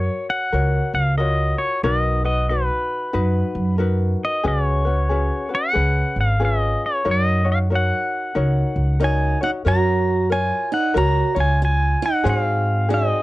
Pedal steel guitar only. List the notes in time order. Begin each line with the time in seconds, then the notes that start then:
Already playing: C#5
0.30 F#5
0.95 F5
1.18 D#5
1.58 C#5
1.84 D#5
2.26 D#5
2.49 B4
4.25 D#5
4.48 D5
4.65 C#5
5.55 F#5
6.21 F5
6.45 D#5
6.86 C#5
7.11 D#5
7.52 F5
7.75 F#5
9.04 G#5
9.44 F#5
9.68 A#5
10.32 G#5
10.74 F#5
10.98 A#5
11.40 G#5
11.65 G#5
12.06 F#5
12.29 F5
12.94 D#5